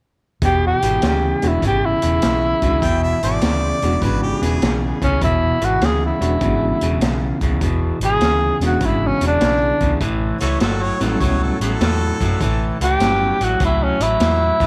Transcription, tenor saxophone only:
0, 0, Header, 1, 2, 480
1, 0, Start_track
1, 0, Tempo, 599401
1, 332, Time_signature, 4, 2, 24, 8
1, 11745, End_track
2, 0, Start_track
2, 0, Title_t, "Tenor saxophone"
2, 0, Program_c, 0, 66
2, 360, Note_on_c, 0, 67, 79
2, 502, Note_off_c, 0, 67, 0
2, 534, Note_on_c, 0, 67, 80
2, 825, Note_off_c, 0, 67, 0
2, 861, Note_on_c, 0, 67, 65
2, 1180, Note_on_c, 0, 64, 64
2, 1192, Note_off_c, 0, 67, 0
2, 1312, Note_off_c, 0, 64, 0
2, 1336, Note_on_c, 0, 67, 73
2, 1484, Note_on_c, 0, 64, 88
2, 1496, Note_off_c, 0, 67, 0
2, 2877, Note_off_c, 0, 64, 0
2, 4033, Note_on_c, 0, 61, 77
2, 4178, Note_off_c, 0, 61, 0
2, 4195, Note_on_c, 0, 64, 81
2, 4521, Note_on_c, 0, 66, 77
2, 4533, Note_off_c, 0, 64, 0
2, 4683, Note_on_c, 0, 68, 68
2, 4695, Note_off_c, 0, 66, 0
2, 4824, Note_off_c, 0, 68, 0
2, 4850, Note_on_c, 0, 64, 66
2, 5763, Note_off_c, 0, 64, 0
2, 6446, Note_on_c, 0, 68, 101
2, 6894, Note_off_c, 0, 68, 0
2, 6936, Note_on_c, 0, 66, 71
2, 7090, Note_on_c, 0, 64, 70
2, 7102, Note_off_c, 0, 66, 0
2, 7260, Note_on_c, 0, 61, 73
2, 7272, Note_off_c, 0, 64, 0
2, 7391, Note_off_c, 0, 61, 0
2, 7424, Note_on_c, 0, 62, 85
2, 8018, Note_off_c, 0, 62, 0
2, 10276, Note_on_c, 0, 67, 98
2, 10758, Note_on_c, 0, 66, 80
2, 10770, Note_off_c, 0, 67, 0
2, 10898, Note_off_c, 0, 66, 0
2, 10930, Note_on_c, 0, 64, 83
2, 11079, Note_on_c, 0, 61, 80
2, 11091, Note_off_c, 0, 64, 0
2, 11231, Note_on_c, 0, 64, 100
2, 11243, Note_off_c, 0, 61, 0
2, 11745, Note_off_c, 0, 64, 0
2, 11745, End_track
0, 0, End_of_file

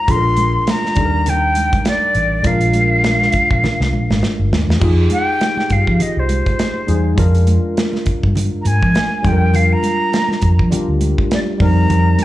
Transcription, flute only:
0, 0, Header, 1, 2, 480
1, 0, Start_track
1, 0, Tempo, 590551
1, 70, Time_signature, 4, 2, 24, 8
1, 9954, End_track
2, 0, Start_track
2, 0, Title_t, "Flute"
2, 0, Program_c, 0, 73
2, 0, Note_on_c, 0, 82, 101
2, 90, Note_on_c, 0, 84, 113
2, 102, Note_off_c, 0, 82, 0
2, 573, Note_on_c, 0, 82, 103
2, 585, Note_off_c, 0, 84, 0
2, 1052, Note_on_c, 0, 79, 106
2, 1064, Note_off_c, 0, 82, 0
2, 1522, Note_off_c, 0, 79, 0
2, 1526, Note_on_c, 0, 74, 93
2, 2006, Note_on_c, 0, 77, 95
2, 2018, Note_off_c, 0, 74, 0
2, 3440, Note_off_c, 0, 77, 0
2, 4166, Note_on_c, 0, 79, 107
2, 4653, Note_on_c, 0, 77, 89
2, 4665, Note_off_c, 0, 79, 0
2, 4894, Note_on_c, 0, 75, 88
2, 4906, Note_off_c, 0, 77, 0
2, 5036, Note_on_c, 0, 72, 74
2, 5048, Note_off_c, 0, 75, 0
2, 5744, Note_off_c, 0, 72, 0
2, 7004, Note_on_c, 0, 82, 60
2, 7048, Note_on_c, 0, 80, 93
2, 7060, Note_off_c, 0, 82, 0
2, 7532, Note_on_c, 0, 79, 79
2, 7544, Note_off_c, 0, 80, 0
2, 7768, Note_on_c, 0, 77, 87
2, 7780, Note_off_c, 0, 79, 0
2, 7907, Note_on_c, 0, 82, 102
2, 7919, Note_off_c, 0, 77, 0
2, 8618, Note_off_c, 0, 82, 0
2, 9212, Note_on_c, 0, 74, 83
2, 9264, Note_off_c, 0, 74, 0
2, 9455, Note_on_c, 0, 82, 99
2, 9951, Note_off_c, 0, 82, 0
2, 9954, End_track
0, 0, End_of_file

